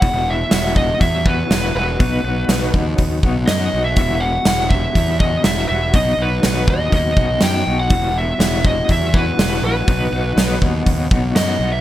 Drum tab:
HH |o-o-o-o-|o-o-o-o-|o-o-o-o-|o-o-o-o-|
SD |--o---o-|--o---o-|--o---o-|--o---o-|
BD |o--ooo--|o--ooo--|o--ooo--|o--ooo--|

HH |o-o-o-o-|o-o-o-o-|
SD |--o---o-|--o---o-|
BD |o--ooo--|o--ooo--|